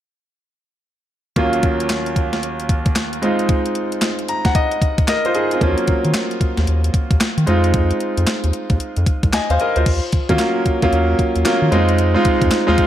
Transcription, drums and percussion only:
1.36 kick, closed hi-hat
1.53 closed hi-hat
1.63 kick, closed hi-hat
1.80 closed hi-hat
1.90 snare, clap, closed hi-hat
2.06 closed hi-hat
2.16 kick, closed hi-hat
2.33 snare, closed hi-hat
2.43 closed hi-hat
2.60 closed hi-hat
2.69 kick, closed hi-hat
2.86 kick, closed hi-hat
2.96 snare, clap, closed hi-hat
3.13 closed hi-hat
3.23 closed hi-hat
3.39 closed hi-hat
3.49 kick, closed hi-hat
3.66 closed hi-hat
3.75 closed hi-hat
3.92 closed hi-hat
4.02 snare, clap, closed hi-hat
4.19 closed hi-hat
4.28 closed hi-hat
4.45 kick, snare, closed hi-hat
4.55 kick, closed hi-hat
4.71 closed hi-hat
4.82 kick, closed hi-hat
4.98 kick, closed hi-hat
5.08 snare, clap, closed hi-hat
5.25 closed hi-hat
5.35 closed hi-hat
5.51 closed hi-hat
5.61 kick, closed hi-hat
5.78 closed hi-hat
5.87 kick, closed hi-hat
6.05 closed hi-hat
6.14 snare, clap, closed hi-hat
6.31 closed hi-hat
6.41 kick, closed hi-hat
6.57 snare, closed hi-hat
6.67 closed hi-hat
6.84 closed hi-hat
6.94 kick, closed hi-hat
7.11 kick, closed hi-hat
7.21 snare, clap, closed hi-hat
7.38 closed hi-hat
7.47 closed hi-hat
7.64 closed hi-hat
7.74 kick, closed hi-hat
7.91 closed hi-hat
8.00 closed hi-hat
8.17 closed hi-hat
8.27 snare, clap, closed hi-hat
8.44 closed hi-hat
8.53 closed hi-hat
8.70 kick, closed hi-hat
8.80 closed hi-hat
8.96 closed hi-hat
9.06 kick, closed hi-hat
9.23 kick, closed hi-hat
9.33 snare, clap, closed hi-hat
9.50 closed hi-hat
9.60 closed hi-hat
9.76 closed hi-hat
9.86 kick, closed hi-hat, crash
10.12 kick, closed hi-hat
10.29 kick, closed hi-hat
10.39 snare, clap, closed hi-hat
10.66 kick, closed hi-hat
10.82 kick, closed hi-hat
10.93 closed hi-hat
11.19 kick, closed hi-hat
11.36 closed hi-hat
11.45 snare, clap, closed hi-hat
11.72 closed hi-hat
11.89 closed hi-hat
11.98 closed hi-hat
12.25 kick, closed hi-hat
12.41 kick, closed hi-hat
12.51 snare, clap, closed hi-hat
12.78 kick, closed hi-hat

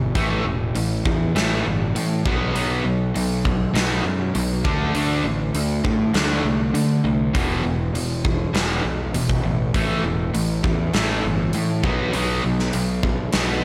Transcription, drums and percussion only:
0.15 kick, open hi-hat
0.75 open hi-hat
1.05 kick
1.36 snare, open hi-hat
1.96 open hi-hat
2.26 kick
2.56 open hi-hat
3.16 open hi-hat
3.45 kick
3.75 snare, open hi-hat
4.35 open hi-hat
4.65 kick
4.95 open hi-hat
5.55 open hi-hat
5.85 kick
6.14 snare, open hi-hat
6.75 open hi-hat
7.35 kick, open hi-hat
7.95 open hi-hat
8.25 kick
8.55 snare, open hi-hat
9.14 open hi-hat
9.29 kick
9.74 kick, open hi-hat
10.35 open hi-hat
10.64 kick
10.94 snare, open hi-hat
11.53 open hi-hat
11.84 kick
12.13 open hi-hat
12.59 snare
12.73 open hi-hat
13.03 kick
13.33 snare, open hi-hat

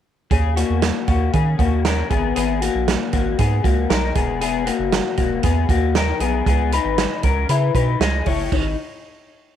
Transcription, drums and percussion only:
0.31 kick, closed hi-hat
0.57 closed hi-hat
0.82 snare, closed hi-hat
1.08 kick, closed hi-hat
1.33 kick, closed hi-hat
1.59 kick, closed hi-hat
1.85 snare, closed hi-hat
2.10 kick, closed hi-hat
2.36 closed hi-hat
2.62 closed hi-hat
2.88 snare, closed hi-hat
3.13 kick, closed hi-hat
3.38 kick, closed hi-hat
3.64 kick, closed hi-hat
3.90 snare, closed hi-hat
4.15 kick, closed hi-hat
4.41 closed hi-hat
4.67 closed hi-hat
4.92 snare, closed hi-hat
5.17 kick, closed hi-hat
5.43 kick, closed hi-hat
5.69 kick, closed hi-hat
5.95 snare, closed hi-hat
6.20 closed hi-hat
6.46 kick, closed hi-hat
6.72 closed hi-hat
6.98 snare, closed hi-hat
7.23 kick, closed hi-hat
7.49 closed hi-hat
7.75 kick, closed hi-hat
8.01 snare, closed hi-hat
8.26 kick, open hi-hat
8.52 kick, crash

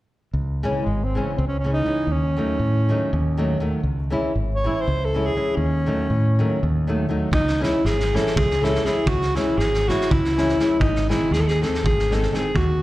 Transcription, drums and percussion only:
7.33 kick
7.48 snare
7.63 snare
7.85 snare
8.00 snare
8.15 snare
8.26 snare
8.37 kick
8.51 snare
8.64 snare
8.75 snare
8.86 snare
9.07 kick
9.22 snare
9.36 snare
9.59 snare
9.74 snare
9.89 snare
10.01 snare
10.11 kick
10.25 snare
10.38 snare
10.49 snare
10.60 snare
10.81 kick
10.95 snare
11.10 snare
11.33 snare
11.48 snare
11.62 snare
11.74 snare
11.86 kick
11.99 snare
12.12 snare
12.23 snare
12.34 snare
12.56 kick

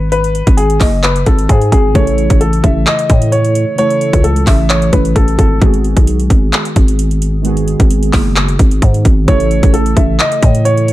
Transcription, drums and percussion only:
0.12 closed hi-hat
0.24 closed hi-hat
0.35 closed hi-hat
0.47 kick, closed hi-hat
0.58 closed hi-hat
0.70 closed hi-hat
0.81 kick, clap, open hi-hat
1.03 clap, closed hi-hat
1.16 closed hi-hat
1.26 kick, closed hi-hat
1.39 closed hi-hat
1.49 kick, closed hi-hat
1.61 closed hi-hat
1.72 kick, closed hi-hat
1.95 kick, closed hi-hat
2.07 closed hi-hat
2.18 closed hi-hat
2.30 kick, closed hi-hat
2.41 closed hi-hat
2.53 closed hi-hat
2.64 kick, closed hi-hat
2.87 clap, closed hi-hat
2.99 closed hi-hat
3.10 kick, closed hi-hat
3.22 closed hi-hat
3.32 closed hi-hat
3.45 closed hi-hat
3.55 closed hi-hat
3.78 closed hi-hat
3.90 closed hi-hat
4.01 closed hi-hat
4.13 kick, closed hi-hat
4.24 closed hi-hat
4.36 closed hi-hat
4.47 kick, clap, open hi-hat
4.70 clap, closed hi-hat
4.82 closed hi-hat
4.93 kick, closed hi-hat
5.05 closed hi-hat
5.16 kick, closed hi-hat
5.28 closed hi-hat
5.39 kick, closed hi-hat
5.62 kick, closed hi-hat
5.74 closed hi-hat
5.84 closed hi-hat
5.97 kick, closed hi-hat
6.07 closed hi-hat
6.20 closed hi-hat
6.30 kick, closed hi-hat
6.53 clap, closed hi-hat
6.65 closed hi-hat
6.76 kick, closed hi-hat
6.88 closed hi-hat
6.99 closed hi-hat
7.11 closed hi-hat
7.22 closed hi-hat
7.45 closed hi-hat
7.57 closed hi-hat
7.68 closed hi-hat
7.80 kick, closed hi-hat
7.91 closed hi-hat
8.03 closed hi-hat
8.13 kick, clap, open hi-hat
8.36 clap, closed hi-hat
8.48 closed hi-hat
8.59 kick, closed hi-hat
8.71 closed hi-hat
8.82 kick, closed hi-hat
8.94 closed hi-hat
9.05 kick, closed hi-hat
9.28 kick, closed hi-hat
9.40 closed hi-hat
9.51 closed hi-hat
9.63 kick, closed hi-hat
9.74 closed hi-hat
9.86 closed hi-hat
9.97 kick, closed hi-hat
10.20 clap, closed hi-hat
10.32 closed hi-hat
10.43 kick, closed hi-hat
10.55 closed hi-hat
10.65 closed hi-hat
10.78 closed hi-hat
10.88 closed hi-hat

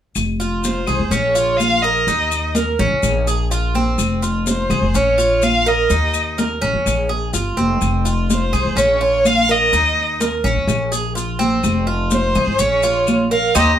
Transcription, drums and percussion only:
0.15 high conga, claves, maracas
0.41 high conga, maracas
0.64 high conga, maracas
0.87 claves, maracas
1.12 high conga, maracas
1.36 high conga, maracas
1.58 high conga, claves, maracas
1.84 high conga, maracas
2.08 high conga, maracas
2.31 high conga, claves, maracas
2.55 high conga, maracas
2.79 maracas
3.03 high conga, claves, maracas
3.27 high conga, maracas
3.51 high conga, maracas
3.75 high conga, maracas
3.99 high conga, claves, maracas
4.23 high conga, maracas
4.47 high conga, maracas
4.70 claves, maracas
4.95 high conga, maracas
5.19 high conga, maracas
5.42 high conga, claves, maracas
5.67 high conga, maracas
5.90 high conga, maracas
6.14 high conga, claves, maracas
6.39 high conga, maracas
6.63 high conga, maracas
6.86 high conga, claves, maracas
7.11 high conga
7.34 high conga, maracas
7.58 high conga, maracas
7.81 high conga, claves, maracas
8.06 high conga, maracas
8.30 high conga, maracas
8.53 claves, maracas
8.78 high conga, maracas
9.01 high conga
9.25 high conga, claves, maracas
9.49 high conga, maracas
9.73 high conga, maracas
9.97 high conga, claves
10.21 high conga, maracas
10.46 high conga, maracas
10.68 high conga, claves, maracas
10.93 high conga, maracas
11.17 high conga, maracas
11.40 high conga, maracas
11.64 high conga, claves, maracas
11.89 high conga
12.11 high conga, maracas
12.35 claves, maracas
12.59 high conga, maracas
12.83 high conga, maracas
13.07 high conga, claves, maracas
13.31 high conga, maracas
13.55 high conga, claves, maracas

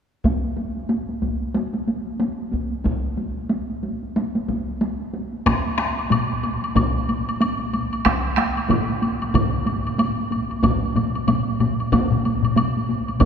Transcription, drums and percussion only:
0.24 taiko, taiko high
0.45 taiko high
0.57 taiko high
0.76 taiko high
0.89 taiko high
1.09 taiko high
1.22 taiko, taiko high
1.41 taiko high
1.54 taiko high
1.74 taiko high
1.88 taiko high
2.07 taiko high
2.20 taiko high
2.39 taiko high
2.52 taiko, taiko high
2.71 taiko high
2.84 taiko, taiko high
3.04 taiko high
3.17 taiko high
3.37 taiko high
3.49 taiko high
3.70 taiko high
3.83 taiko high
4.03 taiko high
4.16 taiko high
4.35 taiko high
4.48 taiko, taiko high
4.68 taiko high
4.81 taiko high
5.00 taiko high
5.14 taiko high
5.33 taiko high
5.46 taiko rim, taiko, taiko high, high woodblock
5.66 taiko high
5.78 taiko rim, taiko high, high woodblock
5.98 taiko high, high woodblock
6.10 taiko low-mid, taiko high, high woodblock
6.30 taiko high
6.43 taiko high, high woodblock
6.62 taiko high, high woodblock
6.75 taiko, taiko low-mid, taiko high, high woodblock
7.09 taiko high, high woodblock
7.28 taiko high, high woodblock
7.41 taiko high, high woodblock
7.60 taiko high
7.73 taiko high, high woodblock
7.93 taiko high, high woodblock
8.05 taiko rim, taiko, taiko high, high woodblock
8.25 taiko high
8.37 taiko rim, taiko high, high woodblock
8.57 taiko high, high woodblock
8.69 taiko mid, taiko high, high woodblock
8.89 taiko high
9.02 taiko high, high woodblock
9.22 taiko high, high woodblock
9.34 taiko, taiko mid, taiko high, high woodblock
9.66 taiko high, high woodblock
9.85 taiko high, high woodblock
9.98 taiko high, high woodblock
10.18 taiko high
10.31 taiko high, high woodblock
10.50 taiko high, high woodblock
10.63 taiko, taiko low-mid, taiko high, high woodblock
10.82 taiko high
10.96 taiko low-mid, taiko high, high woodblock
11.15 taiko high, high woodblock
11.27 taiko low-mid, taiko high, high woodblock
11.48 taiko high
11.60 taiko low-mid, taiko high, high woodblock
11.80 taiko high, high woodblock
11.92 taiko, taiko high, high woodblock
12.11 taiko low-mid
12.25 taiko high, high woodblock
12.42 taiko low-mid, taiko high, high woodblock
12.56 taiko low-mid, taiko high, high woodblock
12.76 taiko high
12.89 taiko high
13.08 taiko high, high woodblock
13.20 taiko, taiko low-mid, taiko mid, taiko high, high woodblock

